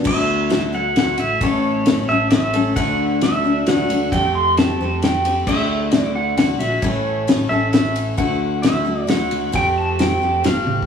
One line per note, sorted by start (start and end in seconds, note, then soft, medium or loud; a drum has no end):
0.04 0.92 D2 loud
0.04 0.48 D3 medium
0.04 0.50 A3 medium
0.04 0.51 E4 medium
0.04 0.51 F#4 medium
0.04 0.70 E5 medium
0.04 kick loud
0.04 crash loud
0.50 0.73 D3 medium
0.50 0.73 A3 medium
0.50 0.73 E4 medium
0.50 0.71 F#4 medium
0.50 snare medium
0.50 ride medium
0.73 0.96 A3 soft
0.73 0.96 E4 soft
0.73 0.96 F#4 medium
0.73 0.97 F#5 medium
0.96 1.18 D2 medium
0.96 1.19 D3 medium
0.96 1.20 A3 medium
0.96 1.18 E4 medium
0.96 1.17 F#4 medium
0.96 1.19 F#5 medium
0.96 snare medium
0.96 ride medium
1.18 1.39 A1 medium
1.18 1.41 A3 soft
1.18 1.42 E4 soft
1.18 1.41 F#4 soft
1.18 1.43 E5 medium
1.18 ride medium
1.41 2.05 A1 loud
1.41 1.87 A2 medium
1.41 1.85 E3 medium
1.41 1.86 A3 medium
1.41 1.86 C#4 medium
1.41 1.88 A4 medium
1.41 2.12 C#5 medium
1.41 kick loud
1.41 ride medium
1.86 2.09 E3 medium
1.86 2.09 A3 medium
1.86 2.09 C#4 medium
1.86 2.08 A4 medium
1.86 snare medium
1.86 ride medium
2.08 2.73 A1 medium
2.08 2.31 A3 soft
2.08 2.32 C#4 soft
2.08 2.32 A4 soft
2.08 2.29 E5 medium
2.30 2.54 E3 medium
2.30 2.55 A3 medium
2.30 2.53 C#4 medium
2.30 2.53 A4 medium
2.30 2.78 E5 medium
2.30 snare medium
2.30 ride medium
2.54 2.76 A3 soft
2.54 2.77 C#4 soft
2.54 2.77 A4 medium
2.54 ride medium
2.76 3.63 D2 loud
2.76 3.22 D3 medium
2.76 3.21 E3 medium
2.76 3.23 A3 medium
2.76 3.22 D4 medium
2.76 3.23 F#4 medium
2.76 3.23 F#5 loud
2.76 kick loud
2.76 ride medium
3.21 3.45 E3 medium
3.21 3.45 A3 medium
3.21 3.44 D4 medium
3.21 3.43 F#4 medium
3.21 3.69 E5 medium
3.21 snare medium
3.21 ride medium
3.44 3.67 A3 soft
3.44 3.68 D4 soft
3.44 3.67 F#4 medium
3.66 3.88 D2 medium
3.66 3.90 E3 medium
3.66 3.89 A3 medium
3.66 3.89 D4 medium
3.66 3.87 F#4 medium
3.66 4.12 F#5 loud
3.66 snare medium
3.66 ride medium
3.88 4.10 D2 medium
3.88 4.12 A3 soft
3.88 4.13 D4 soft
3.88 4.12 F#4 medium
3.88 ride medium
4.12 4.76 F2 loud
4.12 4.57 F3 medium
4.12 4.58 A3 medium
4.12 4.58 C4 medium
4.12 4.58 G4 medium
4.12 4.33 G5 loud
4.12 kick loud
4.12 ride medium
4.35 4.58 C6 loud
4.57 4.80 F3 medium
4.57 4.81 A3 medium
4.57 4.81 C4 medium
4.57 4.79 G4 medium
4.57 5.04 A5 medium
4.57 snare medium
4.57 ride medium
4.79 5.43 F2 medium
4.79 5.03 A3 soft
4.79 5.04 C4 soft
4.79 5.03 G4 medium
5.02 5.25 F3 medium
5.02 5.26 A3 medium
5.02 5.25 C4 medium
5.02 5.24 G4 medium
5.02 5.35 G5 medium
5.02 snare medium
5.02 ride medium
5.25 5.47 A3 soft
5.25 5.48 C4 soft
5.25 5.48 G4 soft
5.25 ride medium
5.46 6.33 D2 loud
5.46 5.91 D3 medium
5.46 5.93 A3 medium
5.46 5.94 E4 medium
5.46 5.94 F#4 medium
5.46 5.96 E5 medium
5.46 kick loud
5.46 crash medium
5.91 6.37 D3 medium
5.91 6.39 A3 medium
5.91 6.40 E4 medium
5.91 6.39 F#4 medium
5.91 snare medium
5.91 ride medium
5.96 6.12 D5 medium
6.16 6.37 F#5 medium
6.37 6.60 D2 medium
6.37 6.61 D3 medium
6.37 6.61 A3 medium
6.37 6.61 E4 medium
6.37 6.60 F#4 medium
6.37 6.59 F#5 medium
6.37 snare medium
6.37 ride medium
6.59 6.81 A#1 medium
6.59 6.84 E4 soft
6.59 6.83 F#4 soft
6.59 6.83 E5 medium
6.59 ride medium
6.64 6.82 A3 soft
6.82 7.46 A1 loud
6.82 7.28 A2 medium
6.82 7.27 E3 medium
6.82 7.28 A3 medium
6.82 7.28 C#4 medium
6.82 7.29 A4 medium
6.82 7.52 C#5 medium
6.82 kick loud
6.82 ride medium
7.27 7.50 E3 medium
7.27 7.51 A3 medium
7.27 7.51 C#4 medium
7.27 7.50 A4 medium
7.27 snare medium
7.27 ride medium
7.49 8.14 A1 medium
7.49 7.73 A3 soft
7.49 7.73 C#4 soft
7.49 7.73 A4 soft
7.49 7.70 E5 medium
7.71 8.17 E3 medium
7.71 8.17 A3 medium
7.71 8.18 C#4 medium
7.71 8.18 E5 medium
7.71 snare medium
7.71 ride medium
7.75 8.19 A4 medium
7.96 ride medium
8.17 9.05 D2 loud
8.17 8.62 D3 medium
8.17 8.63 A3 medium
8.17 8.63 E4 medium
8.17 8.64 F#4 medium
8.17 8.62 F#5 loud
8.17 kick loud
8.17 ride medium
8.62 8.86 D3 medium
8.62 8.86 A3 medium
8.62 8.85 E4 medium
8.62 8.84 F#4 medium
8.62 9.10 E5 medium
8.62 snare medium
8.62 ride medium
8.85 9.07 A3 soft
8.85 9.08 E4 soft
8.85 9.08 F#4 medium
9.07 9.29 D2 medium
9.07 9.52 D3 medium
9.07 9.53 A3 medium
9.07 9.53 E4 medium
9.07 9.53 F#4 medium
9.07 9.52 F#5 medium
9.07 snare medium
9.07 ride medium
9.31 9.52 D2 medium
9.31 ride medium
9.52 10.18 F2 medium
9.52 9.98 F3 medium
9.52 9.98 A3 medium
9.52 9.99 C4 medium
9.52 9.99 G4 medium
9.52 9.76 G5 medium
9.52 kick loud
9.52 ride medium
9.78 9.98 A5 medium
9.99 10.22 F3 medium
9.99 10.22 A3 medium
9.99 10.22 C4 medium
9.99 10.21 G4 medium
9.99 10.43 G5 medium
9.99 snare medium
9.99 ride medium
10.21 10.42 F2 medium
10.21 10.43 A3 soft
10.21 10.43 C4 soft
10.21 10.45 G4 soft
10.44 10.65 G1 medium
10.44 10.86 F3 medium
10.44 10.86 A3 medium
10.44 10.86 C4 medium
10.44 10.86 G4 medium
10.44 10.77 F5 medium
10.44 snare medium
10.44 ride medium
10.67 10.86 A1 medium
10.67 high tom medium
10.82 kick medium